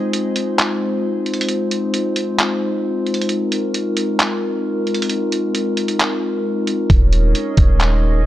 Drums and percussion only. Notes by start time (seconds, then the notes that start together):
0.13 closed hi-hat
0.36 closed hi-hat
0.59 clap, closed hi-hat
1.26 closed hi-hat
1.34 closed hi-hat
1.41 closed hi-hat
1.49 closed hi-hat
1.71 closed hi-hat
1.94 closed hi-hat
2.16 closed hi-hat
2.39 clap, closed hi-hat
3.07 closed hi-hat
3.14 closed hi-hat
3.21 closed hi-hat
3.29 closed hi-hat
3.52 closed hi-hat
3.74 closed hi-hat
3.97 closed hi-hat
4.19 clap, closed hi-hat
4.87 closed hi-hat
4.94 closed hi-hat
5.02 closed hi-hat
5.09 closed hi-hat
5.32 closed hi-hat
5.55 closed hi-hat
5.77 closed hi-hat
5.88 closed hi-hat
6.00 clap, closed hi-hat
6.67 closed hi-hat
6.90 kick, closed hi-hat
7.13 closed hi-hat
7.35 closed hi-hat
7.57 kick, closed hi-hat
7.80 clap, closed hi-hat